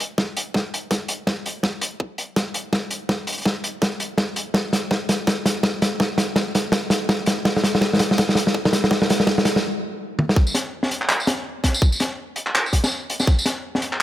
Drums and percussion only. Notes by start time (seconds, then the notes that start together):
0.00 closed hi-hat
0.18 kick, snare
0.37 closed hi-hat
0.54 kick, snare
0.74 closed hi-hat
0.91 kick, snare, closed hi-hat
1.08 closed hi-hat
1.27 kick, snare
1.46 closed hi-hat
1.63 kick, snare
1.81 closed hi-hat
2.00 kick
2.18 closed hi-hat
2.36 kick, snare, closed hi-hat
2.54 closed hi-hat
2.73 kick, snare
2.91 closed hi-hat
3.09 kick, snare
3.27 closed hi-hat
3.32 closed hi-hat
3.38 closed hi-hat
3.42 kick, closed hi-hat
3.46 snare
3.64 closed hi-hat
3.82 kick, snare, closed hi-hat
4.00 closed hi-hat
4.18 kick, snare
4.36 closed hi-hat
4.54 kick, snare
4.73 snare, closed hi-hat
4.91 kick, snare
5.09 snare, closed hi-hat
5.27 kick, snare, closed hi-hat
5.46 snare, closed hi-hat
5.63 kick, snare
5.82 snare, closed hi-hat
6.00 kick, snare
6.18 snare, closed hi-hat
6.36 kick, snare
6.55 snare, closed hi-hat
6.72 kick, snare, closed hi-hat
6.90 snare, closed hi-hat
7.09 kick, snare
7.26 snare, closed hi-hat
7.45 kick, snare
7.57 snare
7.64 snare, closed hi-hat
7.75 snare
7.81 kick, snare
7.93 snare
7.95 snare
7.97 snare
7.99 snare, closed hi-hat
8.11 snare
8.18 kick, snare, closed hi-hat
8.29 snare
8.35 snare, closed hi-hat
8.47 snare
8.54 kick
8.65 snare
8.73 snare, closed hi-hat
8.84 snare
8.91 kick, snare
9.02 snare
9.10 snare, closed hi-hat
9.20 snare
9.27 kick, snare
9.38 snare
9.45 snare, closed hi-hat
9.56 snare
10.19 high tom
10.29 snare
10.36 kick
10.47 tambourine
10.55 snare, closed hi-hat
10.83 snare
10.91 closed hi-hat
11.02 clap
11.09 clap, closed hi-hat
11.20 tambourine
11.27 snare, closed hi-hat
11.64 kick, snare, closed hi-hat
11.74 tambourine
11.82 kick
11.92 tambourine
12.00 snare, closed hi-hat
12.36 closed hi-hat
12.46 clap
12.55 clap, closed hi-hat
12.66 tambourine
12.73 kick, closed hi-hat
12.84 snare, tambourine
13.10 closed hi-hat
13.20 snare, tambourine
13.27 kick
13.39 tambourine
13.46 snare, closed hi-hat
13.75 snare
13.82 closed hi-hat
13.93 clap